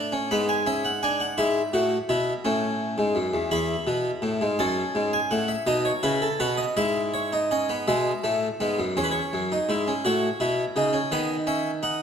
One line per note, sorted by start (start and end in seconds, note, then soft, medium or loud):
0.00 0.27 A2 medium
0.00 0.12 D4 medium
0.00 0.27 A5 medium
0.12 0.30 C#4 medium
0.31 1.36 G#2 medium
0.31 0.54 B3 medium
0.31 0.48 B5 medium
0.49 0.66 G#5 medium
0.66 0.89 C#4 medium
0.66 0.84 E5 medium
0.85 1.02 F#5 medium
1.03 1.25 D4 medium
1.03 1.20 G#5 medium
1.20 1.38 F#5 medium
1.38 1.60 G#2 medium
1.38 1.60 E4 medium
1.38 3.48 E5 medium
1.73 1.96 A2 medium
1.73 1.96 F#4 medium
2.09 2.32 B2 medium
2.09 2.31 E4 medium
2.45 2.97 A2 medium
2.45 3.48 C#4 medium
2.98 3.16 G#2 medium
3.15 3.33 F#2 medium
3.34 3.51 E2 medium
3.51 3.74 E2 medium
3.51 4.56 E4 medium
3.51 4.56 B5 medium
3.87 4.09 B2 medium
4.22 4.40 A2 medium
4.41 4.59 G#2 medium
4.59 4.82 F#2 medium
4.59 5.65 C#4 medium
4.59 5.12 A5 medium
4.95 5.18 G#2 medium
5.13 5.31 G#5 medium
5.31 5.54 A2 medium
5.31 5.49 F#5 medium
5.48 5.67 E5 medium
5.67 5.89 B2 loud
5.67 5.90 D#4 medium
5.67 5.85 D#5 medium
5.85 6.03 C#5 medium
6.03 6.26 C#3 medium
6.03 6.26 E4 medium
6.03 6.21 B4 medium
6.22 6.40 A4 medium
6.40 6.63 B2 medium
6.40 6.63 F#4 medium
6.40 6.58 B4 medium
6.57 6.76 D#5 medium
6.77 7.84 G#2 medium
6.77 7.31 E4 medium
6.77 7.00 E5 medium
7.14 7.37 C#5 medium
7.33 7.50 D#4 medium
7.51 7.69 C#4 medium
7.51 7.74 D#5 medium
7.69 7.87 B3 medium
7.88 8.10 B2 medium
7.88 8.10 G#3 medium
7.88 8.93 E5 medium
8.24 8.47 A2 medium
8.24 8.46 A3 medium
8.60 8.78 G#2 medium
8.60 8.83 B3 medium
8.79 8.96 F#2 medium
8.97 9.19 E2 medium
8.97 9.49 C#4 medium
8.97 9.04 C#5 medium
9.04 9.11 B4 medium
9.11 10.02 C#5 medium
9.33 9.56 F#2 medium
9.52 9.69 D#4 medium
9.69 9.91 G#2 medium
9.69 9.87 E4 medium
9.88 10.05 C#4 medium
10.05 10.27 A2 medium
10.05 10.27 F#4 medium
10.05 11.09 C#5 medium
10.40 10.63 B2 medium
10.40 10.63 E4 medium
10.76 10.98 C#3 medium
10.76 10.94 D#4 medium
10.93 11.11 C#4 medium
11.12 12.02 D#3 medium
11.12 11.34 B3 medium
11.12 11.34 D#5 medium
11.47 11.69 C#4 medium
11.47 11.69 E5 medium
11.83 12.02 D#4 medium
11.83 12.02 F#5 medium